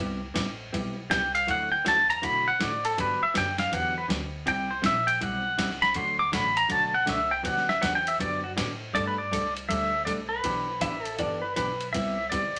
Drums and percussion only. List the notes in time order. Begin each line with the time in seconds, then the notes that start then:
0.36 kick, snare, hi-hat pedal, ride
0.73 kick, ride
1.11 kick, snare, hi-hat pedal, ride
1.35 ride
1.48 kick, ride
1.86 kick, snare, hi-hat pedal, ride
2.10 ride
2.23 kick, ride
2.61 kick, snare, hi-hat pedal, ride
2.85 ride
2.98 kick, ride
3.35 kick, snare, hi-hat pedal, ride
3.58 snare, ride
3.73 kick, ride
4.10 kick, snare, hi-hat pedal, ride
4.47 kick, ride
4.84 kick, snare, hi-hat pedal, ride
5.08 ride
5.21 kick, ride
5.59 kick, snare, hi-hat pedal, ride
5.71 snare
5.83 snare
5.94 kick, ride
6.33 kick, snare, hi-hat pedal, ride
6.57 ride
6.70 kick, ride
7.07 kick, snare, hi-hat pedal, ride
7.45 kick, ride
7.57 snare
7.69 snare
7.83 kick, snare, hi-hat pedal, ride
8.07 ride
8.20 kick, ride
8.58 kick, snare, hi-hat pedal, ride
8.95 kick, ride
9.32 kick, hi-hat pedal, ride
9.57 ride
9.70 kick, ride
10.07 kick, hi-hat pedal, ride
10.44 kick, ride
10.81 kick, hi-hat pedal, ride
11.05 ride
11.19 kick, ride
11.56 kick, hi-hat pedal, ride
11.81 ride
11.94 kick, ride
12.32 kick, hi-hat pedal, ride